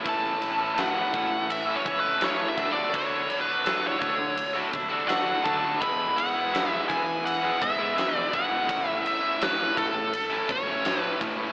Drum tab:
RD |xxxxxxxx|xxxxxxxx|xxxxxxxx|xxxxxxxx|
SD |--o---o-|--o---o-|--o---o-|--o---o-|
BD |o--o-o-o|o--o-o-o|o--o-o-o|o--o-o-o|